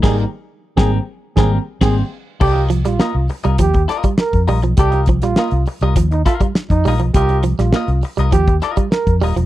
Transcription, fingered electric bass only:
\new Staff \with { instrumentName = "Fingered electric bass" } { \clef bass \time 4/4 \key c \minor \tempo 4 = 101 aes,,8 r8. aes,,8 r8 aes,,8 r16 aes,,8 r8 | c,8. bes,,16 r16 c,16 r16 c,16 ees,8 r8. f,16 bes,,16 b,,16 | c,8. bes,,16 r16 c,16 r16 c,16 ees,8 r8. f,16 bes,,16 b,,16 | c,8. bes,,16 r16 c,16 r16 c,16 ees,8 r8. f,16 ees,,16 e,,16 | }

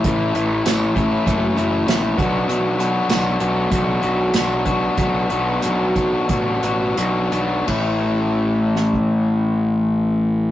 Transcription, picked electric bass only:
\new Staff \with { instrumentName = "Picked electric bass" } { \clef bass \time 4/4 \key a \major \tempo 4 = 94 a,,8 a,,8 a,,4 fis,,8 fis,,8 bes,,8 b,,8 | b,,4 b,,8 b,,8 b,,8 b,,8 b,,4 | b,,8 b,,8 b,,4 a,,8 a,,8 b,,8 b,,8 | a,,1 | }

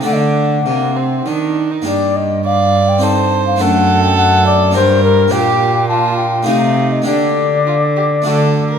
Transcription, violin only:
\new Staff \with { instrumentName = "Violin" } { \time 3/4 \key g \minor \tempo 4 = 102 d'4 bes8 c'8 d'8. ees'16 | r4 d''4 c''4 | a'2 bes'4 | g'4 f'4 ees'4 |
d'4 f'8 g'8 a'8. bes'16 | }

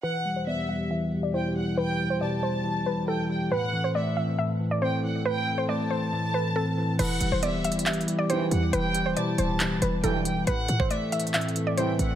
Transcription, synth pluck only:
\new Staff \with { instrumentName = "Synth pluck" } { \time 4/4 \key e \minor \tempo 4 = 138 b'8. c''16 d''8 e''8 e''8. d''16 c''8 r8 | b'8. c''16 d''8 c''4 b'8 a'4 | b'8. c''16 d''8 e''8 e''8. d''16 c''8 r8 | b'8. c''16 d''8 c''4 b'8 a'4 |
b'8. c''16 d''8 e''8 e''8. d''16 c''8 r8 | b'8. c''16 d''8 c''4 b'8 a'4 | b'8. c''16 d''8 e''8 e''8. d''16 c''8 r8 | }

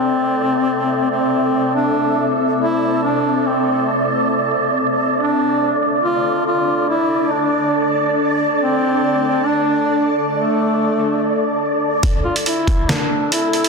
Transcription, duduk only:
\new Staff \with { instrumentName = "Duduk" } { \time 4/4 \key a \minor \tempo 4 = 140 c'2~ c'8 c'4. | d'4. r8 e'4 d'4 | c'4 r2. | d'4. r8 f'4 f'4 |
e'4 d'4. r4. | c'2 d'4. r8 | a2. r4 | r8 f'8 e'4 d'4 e'4 | }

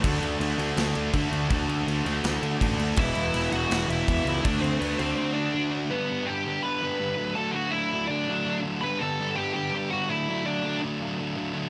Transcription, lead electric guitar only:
\new Staff \with { instrumentName = "Lead electric guitar" } { \time 4/4 \key d \lydian \tempo 4 = 164 r1 | r1 | <e' e''>4. <fis' fis''>4 <e' e''>4 <e' e''>8 | <d' d''>8 <c' c''>8 <b b'>8 <c' c''>8 <c' c''>8 <d' d''>4 r8 |
\key g \lydian <b b'>4 <g' g''>4 <b' b''>2 | <a' a''>8 <fis' fis''>8 <e' e''>4 <d' d''>4. r8 | <b' b''>8 <a' a''>4 <g' g''>8 <g' g''>4 <fis' fis''>8 <e' e''>8~ | <e' e''>8 <d' d''>4 r2 r8 | }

